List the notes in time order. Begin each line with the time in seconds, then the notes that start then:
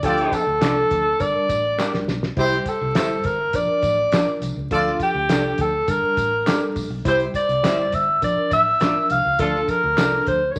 0.03 D2 F3 D4 F4 G4 A4 D5, kick, closed hi-hat, tambourine
0.18 closed hi-hat
0.32 A4, kick, snare, closed hi-hat, tambourine
0.47 D2
0.61 C2 F3 D4 F4 A4 D5, snare, clap, closed hi-hat, tambourine
0.91 D2, kick, closed hi-hat, tambourine
1.20 G1 G3 D4 A#4 D5, kick, closed hi-hat, tambourine
1.35 muted fingered electric bass stroke
1.49 A1, kick, closed hi-hat, tambourine
1.78 G3 D4 G4 A#4 D5, snare, clap, tambourine
1.93 A#1, snare
2.08 B1, snare, tambourine
2.23 snare
2.36 C2 G3 E4 G4 C5, kick, crash, tambourine
2.52 snare
2.66 A4, kick, closed hi-hat, tambourine
2.81 C2
2.95 G1 G3 E4 G4 C5 E5, snare, clap, closed hi-hat, tambourine
3.23 G1 A#4, kick, closed hi-hat, tambourine
3.53 A#1 F3 D4 A#4 D5, kick, closed hi-hat, tambourine
3.68 muted fingered electric bass stroke
3.82 A1, kick, closed hi-hat, tambourine
4.12 A#1 F3 D4 F4 A#4 D5, snare, clap, closed hi-hat, tambourine
4.41 C2, closed hi-hat, tambourine
4.56 C#2
4.71 D2 F3 D4 F4 A4 D5, kick, closed hi-hat
4.87 snare
5.00 G4, kick, closed hi-hat, tambourine
5.14 D2
5.29 C2 F3 D4 F4 A4 D5, snare, clap, closed hi-hat, tambourine
5.58 D2 A4, kick, closed hi-hat, tambourine
5.88 G1 G3 D4 A#4, kick, closed hi-hat, tambourine
6.03 muted fingered electric bass stroke
6.17 A1, kick, closed hi-hat, tambourine
6.46 G3 D4 G4 A4 A#4 D5, snare, clap, closed hi-hat, tambourine
6.76 A#1, kick, open hi-hat, tambourine
6.90 B1
7.05 C2 G3 E4 G4 C5, kick, closed hi-hat, tambourine
7.20 closed hi-hat
7.34 D5, kick, closed hi-hat, tambourine
7.49 C2, closed hi-hat
7.63 G1 G3 E4 G4 C5 E5, snare, clap, closed hi-hat, tambourine
7.92 G1 E5, kick, closed hi-hat, tambourine
8.22 A#1 F3 D4 A#4 D5, kick, closed hi-hat, tambourine
8.37 muted fingered electric bass stroke
8.51 A1 E5, kick, closed hi-hat, tambourine
8.80 A#1 F3 D4 F4 A#4 D5, snare, clap, closed hi-hat, tambourine
9.10 C2 F5, closed hi-hat, tambourine
9.25 C#2
9.38 D2 F3 D4 F4 A4, kick, closed hi-hat, tambourine
9.55 snare
9.68 A#4, kick, snare, closed hi-hat, tambourine
9.84 D2
9.98 C2 F3 D4 F4 A4 D5, snare, clap, closed hi-hat, tambourine
10.27 D2 C5, kick, closed hi-hat, tambourine
10.51 C#5
10.56 G3 D4 A#4, tambourine